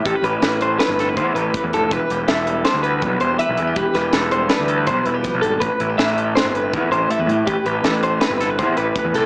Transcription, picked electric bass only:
X:1
M:5/4
L:1/16
Q:1/4=162
K:Am
V:1 name="Picked electric bass" clef=bass
A,,, z A,,,2 A,,,4- A,,, G,,,3 E,,2 A,,,2 z E,, F,,,2 | E,,, z E,,,2 E,,,4- E,,, D,,3 B,,,2 E,,,2 z B,,, E,,2 | E,,, z E,,,2 E,,,4- E,,, D,,3 B,,,2 E,,,2 z B,,, ^G,,,2 | A,,, z A,,,2 A,,,4- A,,, G,,,3 E,,2 A,,,2 z E,, A,,2 |
A,,, z A,,,2 A,,,4- A,,, G,,,3 E,,2 A,,,2 z E,, C,,2 |]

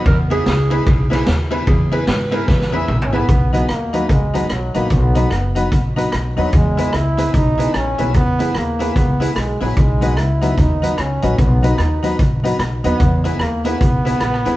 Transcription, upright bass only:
X:1
M:4/4
L:1/8
Q:"Swing" 1/4=148
K:B
V:1 name="Upright bass" clef=bass
E,,2 C,,2 B,,,2 D,,2 | E,,2 G,,2 E,,2 A,,,2 | B,,,2 D,,2 C,,2 B,,, A,,, | B,,,2 F,,,2 A,,,2 B,,, D,, |
E,,2 C,,2 B,,,2 A,,, B,,, | E,,2 D,,2 C,,2 B,,, A,,, | B,,,2 C,,2 D,,2 C,, A,,, | B,,,2 D,,2 A,,,2 B,,, D,, |
E,,2 D,,2 B,,,2 A,,, D,, |]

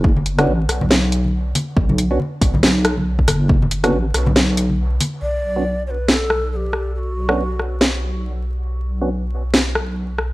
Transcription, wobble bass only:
X:1
M:4/4
L:1/8
Q:"Swing 16ths" 1/4=139
K:Bm
V:1 name="Wobble bass" clef=bass
F,,,2 A,,, B,,,4 z | B,,,2 z B,,,4 F,,,- | F,,,2 A,,, B,,,4 z | B,,,8- |
B,,,8- | B,,,8 |]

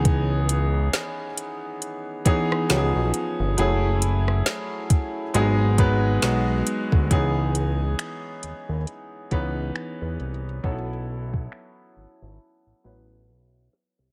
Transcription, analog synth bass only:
X:1
M:4/4
L:1/16
Q:"Swing 16ths" 1/4=68
K:C#m
V:1 name="Analog synth bass" clef=bass
C,,4 z8 C,, B,,, z =G,,, | F,,,4 z4 G,,,4 B,,,2 z =D,, | C,,4 z2 D,, D,, z2 C,,2 z E,, ^B,,,2 | B,,,4 z2 G,,, G,,, z A,,, A,,,2 B,,,2 z ^B,,, |]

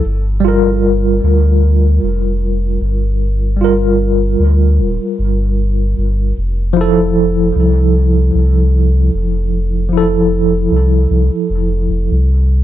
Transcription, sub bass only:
X:1
M:4/4
L:1/16
Q:"Swing 16ths" 1/4=76
K:Gdor
V:1 name="Sub bass" clef=bass
G,,,6 D,,4 F,,,4 G,,,2- | G,,,6 D,,2 D,,, z G,,,4 G,,,2 | F,,,6 C,,4 C,,4 F,,,2- | F,,,6 C,,2 C,, z F,,,2 F,,, C,,3 |]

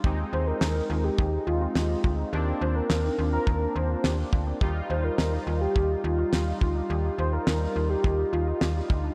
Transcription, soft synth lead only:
X:1
M:4/4
L:1/16
Q:1/4=105
K:Eb
V:1 name="Soft synth lead"
z2 c B4 G3 F4 z2 | z2 c B4 B3 c4 z2 | z2 c B4 G3 F4 z2 | z2 c B4 G3 F4 z2 |]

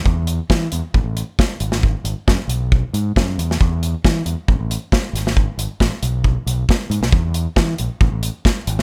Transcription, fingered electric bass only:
X:1
M:4/4
L:1/16
Q:1/4=136
K:Bmix
V:1 name="Fingered electric bass" clef=bass
E,,4 E,2 E,, z A,,, A,,,2 z3 G,,,2- | G,,,2 G,,, z F,, z B,,,4 G,,2 F,,2 E,,2 | E,,4 E,2 E,, z A,,, A,,,2 z3 G,,,2- | G,,,2 G,,, z A,,, z B,,,4 B,,,2 z2 G,, B,,, |
E,,4 E,2 ^A,,, z =A,,, A,,,2 z3 G,,,2 |]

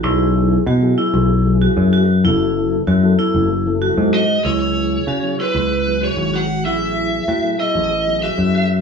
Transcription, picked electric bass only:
X:1
M:7/8
L:1/16
Q:1/4=95
K:C#m
V:1 name="Picked electric bass" clef=bass
B,,,4 B,,2 z B,,,4 F,,3 | F,,,4 F,,2 z F,,,4 G,,3 | C,,4 C,2 z C,,4 G,,,3 | A,,,4 A,,2 z A,,,4 F,,3 |]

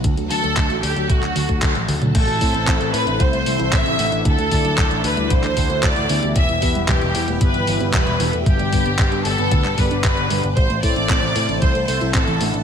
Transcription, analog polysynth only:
X:1
M:4/4
L:1/16
Q:1/4=114
K:Ador
V:1 name="Analog polysynth"
z16 | z2 [CEAc]4 [CEAc] [CEAc]3 [CEAe]4 [DEAf]2- | [DEAf]2 [DEAd]4 [DEAd] [DEAd]3 [DEAf]4 [B,EGe]2- | [B,EGe]2 [B,EGB]4 [B,EGB] [B,EGB]3 [B,EGe]4 [B,DGe]2- |
[B,DGe]2 [B,DGB]4 [B,DGB] [B,DGB]3 [B,DGd]4 [B,DGB] z | z2 [CEAc]4 [CEAc] [CEAc]3 [CEAe]4 [DEAf]2 |]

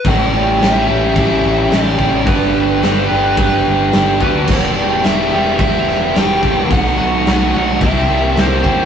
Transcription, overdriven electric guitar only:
X:1
M:4/4
L:1/8
Q:1/4=108
K:Amix
V:1 name="Overdriven electric guitar"
[A,,E,G,CG]2 [E,G,CG] [G,CG] [E,G,CG]2 [E,G,CG] [G,CG] | [G,,D,G,B,DG]2 [G,B,DG] [G,B,DG] [G,B,DG]2 [G,B,DG] [G,B,DG] | [E,,B,,E,G,B,G]2 [E,G,B,G] [E,G,B,G] [E,G,B,G]2 [E,G,B,G] [E,G,B,G] | [B,,F,A,^DF]2 [F,A,DF] [A,DF] [=C,G,_B,EG]2 [G,B,EG] [B,EG] |]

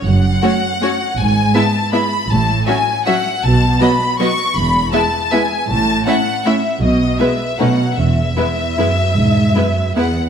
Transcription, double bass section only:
X:1
M:3/4
L:1/8
Q:1/4=156
K:E
V:1 name="Double bass section" clef=bass
F,,,2 z4 | G,,,2 z4 | A,,,2 z4 | B,,,2 z4 |
E,,,2 z4 | A,,,2 z4 | B,,,2 z2 B,,,2 | E,,,2 z4 |
E,,,2 z4 |]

